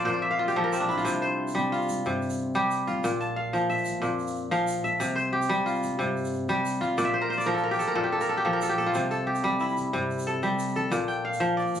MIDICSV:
0, 0, Header, 1, 4, 480
1, 0, Start_track
1, 0, Tempo, 328767
1, 1536, Time_signature, 12, 3, 24, 8
1, 17228, End_track
2, 0, Start_track
2, 0, Title_t, "Kora"
2, 0, Program_c, 0, 46
2, 0, Note_on_c, 0, 53, 83
2, 0, Note_on_c, 0, 70, 69
2, 0, Note_on_c, 0, 74, 70
2, 0, Note_on_c, 0, 76, 68
2, 0, Note_on_c, 0, 77, 71
2, 75, Note_on_c, 0, 46, 81
2, 81, Note_on_c, 0, 72, 69
2, 192, Note_off_c, 0, 74, 0
2, 198, Note_on_c, 0, 74, 66
2, 316, Note_off_c, 0, 76, 0
2, 321, Note_on_c, 0, 76, 72
2, 409, Note_off_c, 0, 77, 0
2, 448, Note_on_c, 0, 77, 68
2, 571, Note_on_c, 0, 65, 66
2, 659, Note_off_c, 0, 76, 0
2, 698, Note_on_c, 0, 67, 71
2, 805, Note_off_c, 0, 53, 0
2, 822, Note_on_c, 0, 53, 74
2, 827, Note_on_c, 0, 69, 64
2, 914, Note_off_c, 0, 70, 0
2, 932, Note_on_c, 0, 70, 70
2, 1061, Note_on_c, 0, 60, 68
2, 1173, Note_on_c, 0, 62, 70
2, 1295, Note_on_c, 0, 64, 70
2, 1382, Note_off_c, 0, 65, 0
2, 1382, Note_off_c, 0, 77, 0
2, 1423, Note_on_c, 0, 65, 63
2, 1529, Note_on_c, 0, 48, 83
2, 1610, Note_off_c, 0, 46, 0
2, 1610, Note_off_c, 0, 53, 0
2, 1774, Note_off_c, 0, 72, 0
2, 1780, Note_on_c, 0, 72, 64
2, 1816, Note_off_c, 0, 74, 0
2, 2258, Note_on_c, 0, 55, 81
2, 2509, Note_off_c, 0, 65, 0
2, 2514, Note_on_c, 0, 65, 66
2, 2602, Note_off_c, 0, 64, 0
2, 2751, Note_off_c, 0, 69, 0
2, 2760, Note_off_c, 0, 67, 0
2, 2790, Note_off_c, 0, 70, 0
2, 2989, Note_off_c, 0, 48, 0
2, 3006, Note_on_c, 0, 48, 80
2, 3514, Note_off_c, 0, 72, 0
2, 3625, Note_off_c, 0, 62, 0
2, 3689, Note_off_c, 0, 60, 0
2, 3707, Note_off_c, 0, 55, 0
2, 3723, Note_on_c, 0, 55, 77
2, 3725, Note_on_c, 0, 67, 68
2, 4190, Note_off_c, 0, 65, 0
2, 4196, Note_on_c, 0, 65, 69
2, 4439, Note_on_c, 0, 46, 85
2, 4504, Note_off_c, 0, 48, 0
2, 4504, Note_off_c, 0, 55, 0
2, 4681, Note_on_c, 0, 81, 68
2, 4910, Note_on_c, 0, 77, 69
2, 5157, Note_on_c, 0, 53, 78
2, 5396, Note_on_c, 0, 76, 68
2, 5483, Note_off_c, 0, 65, 0
2, 5787, Note_off_c, 0, 67, 0
2, 5846, Note_off_c, 0, 46, 0
2, 5864, Note_on_c, 0, 46, 80
2, 5951, Note_off_c, 0, 81, 0
2, 6368, Note_off_c, 0, 77, 0
2, 6572, Note_off_c, 0, 53, 0
2, 6589, Note_on_c, 0, 53, 78
2, 6596, Note_on_c, 0, 77, 62
2, 6677, Note_off_c, 0, 76, 0
2, 7068, Note_on_c, 0, 76, 69
2, 7299, Note_on_c, 0, 48, 82
2, 7389, Note_off_c, 0, 46, 0
2, 7389, Note_off_c, 0, 53, 0
2, 7527, Note_on_c, 0, 72, 69
2, 7776, Note_on_c, 0, 67, 68
2, 8022, Note_on_c, 0, 55, 88
2, 8054, Note_off_c, 0, 77, 0
2, 8261, Note_on_c, 0, 65, 73
2, 8349, Note_off_c, 0, 76, 0
2, 8724, Note_off_c, 0, 48, 0
2, 8742, Note_on_c, 0, 48, 81
2, 9261, Note_off_c, 0, 72, 0
2, 9459, Note_off_c, 0, 55, 0
2, 9470, Note_off_c, 0, 67, 0
2, 9475, Note_on_c, 0, 67, 64
2, 9476, Note_on_c, 0, 55, 78
2, 9935, Note_off_c, 0, 65, 0
2, 9941, Note_on_c, 0, 65, 71
2, 10186, Note_on_c, 0, 74, 72
2, 10190, Note_on_c, 0, 46, 85
2, 10266, Note_off_c, 0, 48, 0
2, 10266, Note_off_c, 0, 55, 0
2, 10289, Note_on_c, 0, 76, 68
2, 10419, Note_on_c, 0, 72, 73
2, 10533, Note_on_c, 0, 70, 70
2, 10652, Note_off_c, 0, 72, 0
2, 10657, Note_on_c, 0, 72, 68
2, 10765, Note_off_c, 0, 74, 0
2, 10771, Note_on_c, 0, 74, 73
2, 10885, Note_off_c, 0, 70, 0
2, 10891, Note_on_c, 0, 70, 68
2, 10898, Note_on_c, 0, 53, 81
2, 10985, Note_off_c, 0, 76, 0
2, 11011, Note_on_c, 0, 69, 68
2, 11141, Note_off_c, 0, 70, 0
2, 11147, Note_on_c, 0, 70, 72
2, 11252, Note_off_c, 0, 67, 0
2, 11258, Note_on_c, 0, 67, 71
2, 11367, Note_off_c, 0, 69, 0
2, 11373, Note_on_c, 0, 69, 70
2, 11461, Note_off_c, 0, 70, 0
2, 11497, Note_on_c, 0, 70, 71
2, 11596, Note_off_c, 0, 46, 0
2, 11609, Note_off_c, 0, 69, 0
2, 11613, Note_on_c, 0, 46, 81
2, 11615, Note_on_c, 0, 69, 72
2, 11726, Note_off_c, 0, 67, 0
2, 11732, Note_on_c, 0, 67, 68
2, 11856, Note_off_c, 0, 69, 0
2, 11862, Note_on_c, 0, 69, 74
2, 11950, Note_off_c, 0, 70, 0
2, 11986, Note_on_c, 0, 70, 68
2, 12101, Note_off_c, 0, 69, 0
2, 12106, Note_on_c, 0, 69, 68
2, 12151, Note_off_c, 0, 65, 0
2, 12220, Note_off_c, 0, 67, 0
2, 12225, Note_on_c, 0, 67, 72
2, 12317, Note_off_c, 0, 53, 0
2, 12334, Note_on_c, 0, 53, 73
2, 12335, Note_off_c, 0, 69, 0
2, 12341, Note_on_c, 0, 69, 65
2, 12389, Note_off_c, 0, 74, 0
2, 12391, Note_off_c, 0, 72, 0
2, 12428, Note_off_c, 0, 70, 0
2, 12455, Note_on_c, 0, 70, 68
2, 12587, Note_off_c, 0, 69, 0
2, 12593, Note_on_c, 0, 69, 70
2, 12689, Note_off_c, 0, 67, 0
2, 12695, Note_on_c, 0, 67, 74
2, 12811, Note_off_c, 0, 69, 0
2, 12817, Note_on_c, 0, 69, 70
2, 12905, Note_off_c, 0, 70, 0
2, 12941, Note_on_c, 0, 65, 65
2, 13068, Note_on_c, 0, 48, 80
2, 13138, Note_off_c, 0, 46, 0
2, 13138, Note_off_c, 0, 53, 0
2, 13294, Note_off_c, 0, 69, 0
2, 13299, Note_on_c, 0, 69, 67
2, 13525, Note_off_c, 0, 67, 0
2, 13531, Note_on_c, 0, 67, 63
2, 13780, Note_on_c, 0, 55, 80
2, 14023, Note_on_c, 0, 64, 65
2, 14110, Note_off_c, 0, 65, 0
2, 14485, Note_off_c, 0, 48, 0
2, 14503, Note_on_c, 0, 48, 81
2, 14986, Note_off_c, 0, 69, 0
2, 14992, Note_on_c, 0, 69, 64
2, 15209, Note_off_c, 0, 55, 0
2, 15226, Note_on_c, 0, 55, 72
2, 15593, Note_off_c, 0, 67, 0
2, 15705, Note_off_c, 0, 69, 0
2, 15711, Note_on_c, 0, 69, 62
2, 15937, Note_on_c, 0, 46, 79
2, 16007, Note_off_c, 0, 48, 0
2, 16007, Note_off_c, 0, 55, 0
2, 16176, Note_on_c, 0, 79, 66
2, 16310, Note_off_c, 0, 64, 0
2, 16421, Note_on_c, 0, 77, 63
2, 16648, Note_on_c, 0, 53, 84
2, 16892, Note_on_c, 0, 74, 63
2, 17228, Note_off_c, 0, 46, 0
2, 17228, Note_off_c, 0, 53, 0
2, 17228, Note_off_c, 0, 69, 0
2, 17228, Note_off_c, 0, 74, 0
2, 17228, Note_off_c, 0, 77, 0
2, 17228, Note_off_c, 0, 79, 0
2, 17228, End_track
3, 0, Start_track
3, 0, Title_t, "Upright bass"
3, 0, Program_c, 1, 32
3, 101, Note_on_c, 1, 41, 86
3, 738, Note_off_c, 1, 41, 0
3, 835, Note_on_c, 1, 34, 84
3, 1253, Note_off_c, 1, 34, 0
3, 1309, Note_on_c, 1, 34, 85
3, 1517, Note_off_c, 1, 34, 0
3, 1548, Note_on_c, 1, 36, 88
3, 2185, Note_off_c, 1, 36, 0
3, 2289, Note_on_c, 1, 48, 83
3, 2490, Note_off_c, 1, 48, 0
3, 2754, Note_on_c, 1, 36, 86
3, 2963, Note_off_c, 1, 36, 0
3, 3009, Note_on_c, 1, 43, 91
3, 3640, Note_off_c, 1, 43, 0
3, 3728, Note_on_c, 1, 36, 83
3, 4146, Note_off_c, 1, 36, 0
3, 4210, Note_on_c, 1, 36, 86
3, 4415, Note_off_c, 1, 36, 0
3, 4455, Note_on_c, 1, 34, 92
3, 5084, Note_off_c, 1, 34, 0
3, 5165, Note_on_c, 1, 46, 85
3, 5373, Note_off_c, 1, 46, 0
3, 5650, Note_on_c, 1, 34, 79
3, 5856, Note_off_c, 1, 34, 0
3, 5876, Note_on_c, 1, 41, 89
3, 6515, Note_off_c, 1, 41, 0
3, 6590, Note_on_c, 1, 34, 85
3, 7019, Note_off_c, 1, 34, 0
3, 7069, Note_on_c, 1, 34, 80
3, 7285, Note_off_c, 1, 34, 0
3, 7317, Note_on_c, 1, 36, 92
3, 7955, Note_off_c, 1, 36, 0
3, 8046, Note_on_c, 1, 48, 86
3, 8254, Note_off_c, 1, 48, 0
3, 8524, Note_on_c, 1, 36, 86
3, 8733, Note_off_c, 1, 36, 0
3, 8763, Note_on_c, 1, 43, 91
3, 9397, Note_off_c, 1, 43, 0
3, 9464, Note_on_c, 1, 36, 83
3, 9893, Note_off_c, 1, 36, 0
3, 9947, Note_on_c, 1, 36, 82
3, 10162, Note_off_c, 1, 36, 0
3, 10188, Note_on_c, 1, 34, 94
3, 10827, Note_off_c, 1, 34, 0
3, 10917, Note_on_c, 1, 46, 81
3, 11127, Note_off_c, 1, 46, 0
3, 11377, Note_on_c, 1, 34, 78
3, 11595, Note_off_c, 1, 34, 0
3, 11617, Note_on_c, 1, 41, 84
3, 12259, Note_off_c, 1, 41, 0
3, 12347, Note_on_c, 1, 34, 82
3, 12771, Note_off_c, 1, 34, 0
3, 12836, Note_on_c, 1, 34, 81
3, 13043, Note_off_c, 1, 34, 0
3, 13073, Note_on_c, 1, 36, 89
3, 13706, Note_off_c, 1, 36, 0
3, 13802, Note_on_c, 1, 48, 79
3, 14005, Note_off_c, 1, 48, 0
3, 14277, Note_on_c, 1, 36, 80
3, 14482, Note_off_c, 1, 36, 0
3, 14508, Note_on_c, 1, 43, 84
3, 15140, Note_off_c, 1, 43, 0
3, 15225, Note_on_c, 1, 36, 84
3, 15645, Note_off_c, 1, 36, 0
3, 15700, Note_on_c, 1, 41, 81
3, 15910, Note_off_c, 1, 41, 0
3, 15919, Note_on_c, 1, 34, 93
3, 16562, Note_off_c, 1, 34, 0
3, 16657, Note_on_c, 1, 46, 80
3, 16866, Note_off_c, 1, 46, 0
3, 17134, Note_on_c, 1, 34, 78
3, 17228, Note_off_c, 1, 34, 0
3, 17228, End_track
4, 0, Start_track
4, 0, Title_t, "Drums"
4, 104, Note_on_c, 9, 82, 20
4, 250, Note_off_c, 9, 82, 0
4, 707, Note_on_c, 9, 82, 22
4, 853, Note_off_c, 9, 82, 0
4, 1059, Note_on_c, 9, 82, 72
4, 1205, Note_off_c, 9, 82, 0
4, 1312, Note_on_c, 9, 82, 20
4, 1431, Note_off_c, 9, 82, 0
4, 1431, Note_on_c, 9, 82, 22
4, 1548, Note_off_c, 9, 82, 0
4, 1548, Note_on_c, 9, 82, 74
4, 1694, Note_off_c, 9, 82, 0
4, 1793, Note_on_c, 9, 82, 20
4, 1939, Note_off_c, 9, 82, 0
4, 2157, Note_on_c, 9, 82, 50
4, 2295, Note_off_c, 9, 82, 0
4, 2295, Note_on_c, 9, 82, 19
4, 2441, Note_off_c, 9, 82, 0
4, 2525, Note_on_c, 9, 82, 21
4, 2649, Note_off_c, 9, 82, 0
4, 2649, Note_on_c, 9, 82, 20
4, 2755, Note_off_c, 9, 82, 0
4, 2755, Note_on_c, 9, 82, 62
4, 2901, Note_off_c, 9, 82, 0
4, 2993, Note_on_c, 9, 82, 21
4, 3139, Note_off_c, 9, 82, 0
4, 3240, Note_on_c, 9, 82, 20
4, 3351, Note_off_c, 9, 82, 0
4, 3351, Note_on_c, 9, 82, 48
4, 3497, Note_off_c, 9, 82, 0
4, 3719, Note_on_c, 9, 82, 20
4, 3865, Note_off_c, 9, 82, 0
4, 3953, Note_on_c, 9, 82, 65
4, 4099, Note_off_c, 9, 82, 0
4, 4200, Note_on_c, 9, 82, 19
4, 4346, Note_off_c, 9, 82, 0
4, 4443, Note_on_c, 9, 82, 66
4, 4589, Note_off_c, 9, 82, 0
4, 4684, Note_on_c, 9, 82, 20
4, 4830, Note_off_c, 9, 82, 0
4, 5164, Note_on_c, 9, 82, 20
4, 5310, Note_off_c, 9, 82, 0
4, 5403, Note_on_c, 9, 82, 21
4, 5516, Note_off_c, 9, 82, 0
4, 5516, Note_on_c, 9, 82, 21
4, 5620, Note_off_c, 9, 82, 0
4, 5620, Note_on_c, 9, 82, 62
4, 5766, Note_off_c, 9, 82, 0
4, 5876, Note_on_c, 9, 82, 21
4, 6022, Note_off_c, 9, 82, 0
4, 6119, Note_on_c, 9, 82, 21
4, 6239, Note_off_c, 9, 82, 0
4, 6239, Note_on_c, 9, 82, 51
4, 6352, Note_off_c, 9, 82, 0
4, 6352, Note_on_c, 9, 82, 21
4, 6498, Note_off_c, 9, 82, 0
4, 6607, Note_on_c, 9, 82, 23
4, 6753, Note_off_c, 9, 82, 0
4, 6826, Note_on_c, 9, 82, 78
4, 6972, Note_off_c, 9, 82, 0
4, 7078, Note_on_c, 9, 82, 23
4, 7224, Note_off_c, 9, 82, 0
4, 7306, Note_on_c, 9, 82, 82
4, 7452, Note_off_c, 9, 82, 0
4, 7558, Note_on_c, 9, 82, 24
4, 7704, Note_off_c, 9, 82, 0
4, 7911, Note_on_c, 9, 82, 57
4, 8040, Note_off_c, 9, 82, 0
4, 8040, Note_on_c, 9, 82, 22
4, 8186, Note_off_c, 9, 82, 0
4, 8278, Note_on_c, 9, 82, 24
4, 8398, Note_off_c, 9, 82, 0
4, 8398, Note_on_c, 9, 82, 23
4, 8512, Note_off_c, 9, 82, 0
4, 8512, Note_on_c, 9, 82, 68
4, 8658, Note_off_c, 9, 82, 0
4, 8755, Note_on_c, 9, 82, 23
4, 8901, Note_off_c, 9, 82, 0
4, 9003, Note_on_c, 9, 82, 20
4, 9119, Note_off_c, 9, 82, 0
4, 9119, Note_on_c, 9, 82, 50
4, 9239, Note_off_c, 9, 82, 0
4, 9239, Note_on_c, 9, 82, 20
4, 9385, Note_off_c, 9, 82, 0
4, 9476, Note_on_c, 9, 82, 20
4, 9622, Note_off_c, 9, 82, 0
4, 9718, Note_on_c, 9, 82, 69
4, 9864, Note_off_c, 9, 82, 0
4, 9958, Note_on_c, 9, 82, 20
4, 10104, Note_off_c, 9, 82, 0
4, 10194, Note_on_c, 9, 82, 62
4, 10340, Note_off_c, 9, 82, 0
4, 10692, Note_on_c, 9, 82, 20
4, 10807, Note_off_c, 9, 82, 0
4, 10807, Note_on_c, 9, 82, 49
4, 10953, Note_off_c, 9, 82, 0
4, 11055, Note_on_c, 9, 82, 19
4, 11201, Note_off_c, 9, 82, 0
4, 11289, Note_on_c, 9, 82, 20
4, 11387, Note_off_c, 9, 82, 0
4, 11387, Note_on_c, 9, 82, 62
4, 11533, Note_off_c, 9, 82, 0
4, 11986, Note_on_c, 9, 82, 50
4, 12132, Note_off_c, 9, 82, 0
4, 12575, Note_on_c, 9, 82, 70
4, 12721, Note_off_c, 9, 82, 0
4, 12824, Note_on_c, 9, 82, 20
4, 12970, Note_off_c, 9, 82, 0
4, 13056, Note_on_c, 9, 82, 69
4, 13202, Note_off_c, 9, 82, 0
4, 13300, Note_on_c, 9, 82, 19
4, 13446, Note_off_c, 9, 82, 0
4, 13652, Note_on_c, 9, 82, 49
4, 13774, Note_off_c, 9, 82, 0
4, 13774, Note_on_c, 9, 82, 19
4, 13920, Note_off_c, 9, 82, 0
4, 14010, Note_on_c, 9, 82, 20
4, 14150, Note_off_c, 9, 82, 0
4, 14150, Note_on_c, 9, 82, 19
4, 14268, Note_off_c, 9, 82, 0
4, 14268, Note_on_c, 9, 82, 61
4, 14414, Note_off_c, 9, 82, 0
4, 14507, Note_on_c, 9, 82, 21
4, 14653, Note_off_c, 9, 82, 0
4, 14751, Note_on_c, 9, 82, 20
4, 14872, Note_off_c, 9, 82, 0
4, 14872, Note_on_c, 9, 82, 50
4, 14987, Note_off_c, 9, 82, 0
4, 14987, Note_on_c, 9, 82, 19
4, 15133, Note_off_c, 9, 82, 0
4, 15220, Note_on_c, 9, 82, 20
4, 15366, Note_off_c, 9, 82, 0
4, 15463, Note_on_c, 9, 82, 65
4, 15609, Note_off_c, 9, 82, 0
4, 15711, Note_on_c, 9, 82, 20
4, 15857, Note_off_c, 9, 82, 0
4, 15942, Note_on_c, 9, 82, 63
4, 16088, Note_off_c, 9, 82, 0
4, 16185, Note_on_c, 9, 82, 19
4, 16331, Note_off_c, 9, 82, 0
4, 16550, Note_on_c, 9, 82, 46
4, 16664, Note_off_c, 9, 82, 0
4, 16664, Note_on_c, 9, 82, 18
4, 16810, Note_off_c, 9, 82, 0
4, 16916, Note_on_c, 9, 82, 20
4, 17040, Note_off_c, 9, 82, 0
4, 17040, Note_on_c, 9, 82, 20
4, 17156, Note_off_c, 9, 82, 0
4, 17156, Note_on_c, 9, 82, 57
4, 17228, Note_off_c, 9, 82, 0
4, 17228, End_track
0, 0, End_of_file